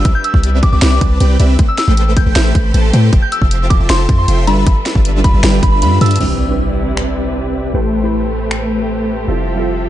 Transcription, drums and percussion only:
0.05 kick loud
0.05 closed hi-hat medium
0.24 closed hi-hat medium
0.34 kick medium
0.43 closed hi-hat medium
0.63 kick loud
0.63 closed hi-hat medium
0.82 snare loud
0.82 closed hi-hat medium
1.01 kick loud
1.01 closed hi-hat medium
1.20 closed hi-hat medium
1.40 closed hi-hat medium
1.59 kick loud
1.59 closed hi-hat medium
1.78 snare medium
1.78 closed hi-hat medium
1.97 closed hi-hat medium
2.17 kick loud
2.17 closed hi-hat medium
2.36 snare loud
2.36 closed hi-hat medium
2.55 kick loud
2.55 closed hi-hat medium
2.74 closed hi-hat medium
2.94 closed hi-hat medium
3.13 kick loud
3.13 closed hi-hat medium
3.32 closed hi-hat medium
3.42 kick medium
3.51 closed hi-hat medium
3.70 kick loud
3.70 closed hi-hat medium
3.90 snare loud
3.90 closed hi-hat medium
4.09 kick loud
4.09 closed hi-hat medium
4.28 closed hi-hat medium
4.47 closed hi-hat medium
4.67 kick loud
4.67 closed hi-hat medium
4.86 snare medium
4.86 closed hi-hat medium
4.95 kick medium
5.05 closed hi-hat medium
5.24 kick loud
5.24 closed hi-hat medium
5.44 snare loud
5.44 closed hi-hat medium
5.63 kick loud
5.63 closed hi-hat medium
5.82 closed hi-hat medium
6.01 closed hi-hat medium
6.06 closed hi-hat medium
6.11 closed hi-hat medium
6.16 closed hi-hat medium
6.20 crash medium
6.97 finger snap loud
8.51 finger snap loud

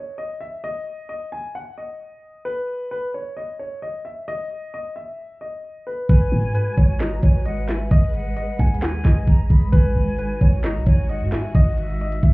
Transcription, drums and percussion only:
6.09 kick loud
6.09 closed hi-hat medium
6.55 closed hi-hat medium
6.78 kick medium
6.78 closed hi-hat medium
7.00 snare loud
7.00 clap loud
7.00 closed hi-hat medium
7.23 kick loud
7.23 closed hi-hat medium
7.46 closed hi-hat medium
7.68 snare loud
7.68 clap medium
7.68 closed hi-hat medium
7.91 kick loud
7.91 closed hi-hat loud
8.14 closed hi-hat medium
8.37 closed hi-hat medium
8.59 kick loud
8.59 closed hi-hat soft
8.67 closed hi-hat medium
8.74 closed hi-hat medium
8.82 snare loud
8.82 clap loud
8.82 closed hi-hat medium
9.04 kick loud
9.04 snare loud
9.04 clap medium
9.04 closed hi-hat medium
9.27 kick loud
9.27 closed hi-hat medium
9.50 kick loud
9.50 closed hi-hat medium
9.73 kick loud
9.73 closed hi-hat medium
10.19 closed hi-hat medium
10.41 kick loud
10.41 closed hi-hat medium
10.64 snare loud
10.64 clap medium
10.64 closed hi-hat medium
10.86 kick loud
10.86 closed hi-hat medium
11.09 closed hi-hat medium
11.32 snare loud
11.32 clap medium
11.32 closed hi-hat medium
11.55 kick loud
11.55 closed hi-hat loud
11.78 closed hi-hat medium
12.00 closed hi-hat soft
12.12 closed hi-hat medium
12.23 kick loud
12.23 closed hi-hat medium

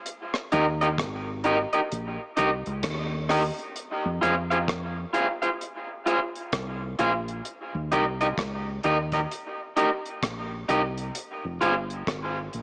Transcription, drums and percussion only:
0.06 closed hi-hat loud
0.34 cross-stick medium
0.52 closed hi-hat medium
0.81 closed hi-hat soft
0.98 kick loud
0.98 cross-stick medium
0.98 closed hi-hat medium
1.44 closed hi-hat medium
1.73 closed hi-hat soft
1.92 closed hi-hat medium
2.37 closed hi-hat medium
2.66 closed hi-hat soft
2.83 kick loud
2.83 cross-stick loud
2.83 closed hi-hat medium
3.29 cross-stick medium
3.29 open hi-hat medium
3.59 closed hi-hat medium
3.76 closed hi-hat medium
4.23 closed hi-hat medium
4.51 closed hi-hat soft
4.68 kick loud
4.68 cross-stick loud
4.68 closed hi-hat medium
5.14 closed hi-hat medium
5.42 closed hi-hat soft
5.61 closed hi-hat medium
6.07 closed hi-hat medium
6.36 closed hi-hat soft
6.52 kick medium
6.52 cross-stick loud
6.52 closed hi-hat medium
6.99 closed hi-hat medium
7.28 closed hi-hat medium
7.45 closed hi-hat loud
7.92 closed hi-hat medium
8.21 closed hi-hat soft
8.38 kick loud
8.38 cross-stick medium
8.38 closed hi-hat medium
8.83 closed hi-hat soft
9.12 kick medium
9.12 closed hi-hat soft
9.31 closed hi-hat medium
9.77 closed hi-hat medium
10.06 closed hi-hat soft
10.23 kick medium
10.23 cross-stick loud
10.23 closed hi-hat medium
10.69 closed hi-hat medium
10.98 closed hi-hat medium
11.15 closed hi-hat loud
11.62 closed hi-hat medium
11.90 closed hi-hat soft
12.07 kick loud
12.07 cross-stick loud
12.07 closed hi-hat medium
12.53 closed hi-hat medium

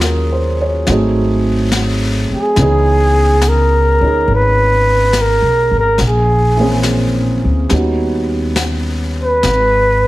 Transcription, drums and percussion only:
0.01 snare soft
0.01 hi-hat pedal soft
0.87 brush sweep soft
0.87 snare soft
1.72 snare soft
1.72 hi-hat pedal soft
2.56 brush sweep soft
2.56 snare soft
3.41 snare soft
3.41 hi-hat pedal medium
4.28 brush sweep soft
5.13 snare soft
5.13 hi-hat pedal soft
5.98 brush sweep soft
5.98 snare soft
6.83 snare soft
6.83 hi-hat pedal soft
7.70 brush sweep soft
7.70 snare soft
8.56 snare soft
8.56 hi-hat pedal medium
9.43 brush sweep soft
9.43 snare soft

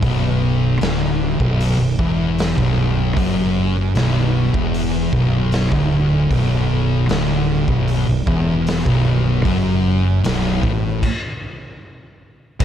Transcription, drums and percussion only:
0.03 kick loud
0.03 open hi-hat medium
0.81 snare loud
0.81 open hi-hat medium
1.40 kick loud
1.60 open hi-hat medium
1.99 kick loud
2.38 snare loud
2.38 open hi-hat medium
2.58 kick loud
3.17 kick loud
3.17 open hi-hat medium
3.95 snare loud
3.95 open hi-hat medium
4.54 kick loud
4.74 open hi-hat medium
5.13 kick loud
5.52 snare loud
5.52 open hi-hat medium
5.72 kick loud
6.31 kick loud
6.31 open hi-hat medium
7.09 snare loud
7.09 open hi-hat medium
7.68 kick medium
7.88 open hi-hat medium
8.27 kick loud
8.67 snare loud
8.67 open hi-hat medium
8.86 kick loud
9.45 kick loud
9.45 open hi-hat medium
10.24 snare loud
10.24 open hi-hat medium
10.63 kick loud
11.03 kick loud
11.03 crash loud
12.60 kick loud
12.60 crash loud
12.60 crash medium

